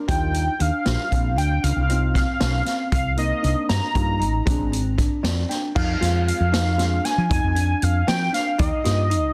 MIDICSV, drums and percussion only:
0, 0, Header, 1, 2, 480
1, 0, Start_track
1, 0, Tempo, 515907
1, 72, Time_signature, 11, 3, 24, 8
1, 8682, End_track
2, 0, Start_track
2, 0, Title_t, "Drums"
2, 80, Note_on_c, 9, 36, 100
2, 80, Note_on_c, 9, 42, 70
2, 173, Note_off_c, 9, 36, 0
2, 173, Note_off_c, 9, 42, 0
2, 320, Note_on_c, 9, 42, 56
2, 413, Note_off_c, 9, 42, 0
2, 558, Note_on_c, 9, 42, 52
2, 651, Note_off_c, 9, 42, 0
2, 797, Note_on_c, 9, 38, 91
2, 797, Note_on_c, 9, 42, 66
2, 890, Note_off_c, 9, 38, 0
2, 890, Note_off_c, 9, 42, 0
2, 1042, Note_on_c, 9, 36, 65
2, 1044, Note_on_c, 9, 42, 54
2, 1135, Note_off_c, 9, 36, 0
2, 1137, Note_off_c, 9, 42, 0
2, 1285, Note_on_c, 9, 42, 51
2, 1378, Note_off_c, 9, 42, 0
2, 1523, Note_on_c, 9, 42, 73
2, 1616, Note_off_c, 9, 42, 0
2, 1764, Note_on_c, 9, 42, 60
2, 1857, Note_off_c, 9, 42, 0
2, 2002, Note_on_c, 9, 36, 67
2, 2005, Note_on_c, 9, 38, 33
2, 2005, Note_on_c, 9, 42, 62
2, 2095, Note_off_c, 9, 36, 0
2, 2099, Note_off_c, 9, 38, 0
2, 2099, Note_off_c, 9, 42, 0
2, 2238, Note_on_c, 9, 38, 100
2, 2238, Note_on_c, 9, 42, 78
2, 2331, Note_off_c, 9, 38, 0
2, 2331, Note_off_c, 9, 42, 0
2, 2477, Note_on_c, 9, 38, 32
2, 2477, Note_on_c, 9, 42, 56
2, 2570, Note_off_c, 9, 38, 0
2, 2570, Note_off_c, 9, 42, 0
2, 2717, Note_on_c, 9, 42, 75
2, 2718, Note_on_c, 9, 36, 95
2, 2810, Note_off_c, 9, 42, 0
2, 2811, Note_off_c, 9, 36, 0
2, 2953, Note_on_c, 9, 42, 57
2, 3046, Note_off_c, 9, 42, 0
2, 3199, Note_on_c, 9, 42, 51
2, 3292, Note_off_c, 9, 42, 0
2, 3437, Note_on_c, 9, 38, 91
2, 3437, Note_on_c, 9, 42, 68
2, 3530, Note_off_c, 9, 38, 0
2, 3530, Note_off_c, 9, 42, 0
2, 3677, Note_on_c, 9, 36, 68
2, 3678, Note_on_c, 9, 42, 50
2, 3770, Note_off_c, 9, 36, 0
2, 3771, Note_off_c, 9, 42, 0
2, 3921, Note_on_c, 9, 42, 47
2, 4014, Note_off_c, 9, 42, 0
2, 4157, Note_on_c, 9, 36, 93
2, 4157, Note_on_c, 9, 42, 72
2, 4250, Note_off_c, 9, 36, 0
2, 4250, Note_off_c, 9, 42, 0
2, 4402, Note_on_c, 9, 42, 55
2, 4495, Note_off_c, 9, 42, 0
2, 4637, Note_on_c, 9, 36, 67
2, 4637, Note_on_c, 9, 42, 57
2, 4730, Note_off_c, 9, 36, 0
2, 4730, Note_off_c, 9, 42, 0
2, 4880, Note_on_c, 9, 38, 95
2, 4880, Note_on_c, 9, 42, 70
2, 4973, Note_off_c, 9, 38, 0
2, 4973, Note_off_c, 9, 42, 0
2, 5123, Note_on_c, 9, 38, 29
2, 5123, Note_on_c, 9, 42, 57
2, 5216, Note_off_c, 9, 38, 0
2, 5216, Note_off_c, 9, 42, 0
2, 5358, Note_on_c, 9, 36, 101
2, 5361, Note_on_c, 9, 49, 92
2, 5451, Note_off_c, 9, 36, 0
2, 5454, Note_off_c, 9, 49, 0
2, 5604, Note_on_c, 9, 38, 33
2, 5604, Note_on_c, 9, 42, 65
2, 5697, Note_off_c, 9, 38, 0
2, 5697, Note_off_c, 9, 42, 0
2, 5845, Note_on_c, 9, 42, 60
2, 5938, Note_off_c, 9, 42, 0
2, 6082, Note_on_c, 9, 38, 90
2, 6082, Note_on_c, 9, 42, 76
2, 6175, Note_off_c, 9, 38, 0
2, 6175, Note_off_c, 9, 42, 0
2, 6318, Note_on_c, 9, 38, 31
2, 6318, Note_on_c, 9, 42, 55
2, 6411, Note_off_c, 9, 38, 0
2, 6411, Note_off_c, 9, 42, 0
2, 6558, Note_on_c, 9, 38, 31
2, 6558, Note_on_c, 9, 42, 57
2, 6651, Note_off_c, 9, 38, 0
2, 6651, Note_off_c, 9, 42, 0
2, 6799, Note_on_c, 9, 36, 106
2, 6800, Note_on_c, 9, 42, 81
2, 6892, Note_off_c, 9, 36, 0
2, 6894, Note_off_c, 9, 42, 0
2, 7036, Note_on_c, 9, 42, 59
2, 7129, Note_off_c, 9, 42, 0
2, 7276, Note_on_c, 9, 42, 59
2, 7369, Note_off_c, 9, 42, 0
2, 7517, Note_on_c, 9, 38, 97
2, 7517, Note_on_c, 9, 42, 72
2, 7610, Note_off_c, 9, 38, 0
2, 7610, Note_off_c, 9, 42, 0
2, 7760, Note_on_c, 9, 38, 32
2, 7760, Note_on_c, 9, 42, 57
2, 7853, Note_off_c, 9, 38, 0
2, 7853, Note_off_c, 9, 42, 0
2, 7991, Note_on_c, 9, 42, 70
2, 7997, Note_on_c, 9, 36, 106
2, 8084, Note_off_c, 9, 42, 0
2, 8090, Note_off_c, 9, 36, 0
2, 8236, Note_on_c, 9, 38, 34
2, 8236, Note_on_c, 9, 42, 59
2, 8329, Note_off_c, 9, 38, 0
2, 8329, Note_off_c, 9, 42, 0
2, 8476, Note_on_c, 9, 42, 55
2, 8569, Note_off_c, 9, 42, 0
2, 8682, End_track
0, 0, End_of_file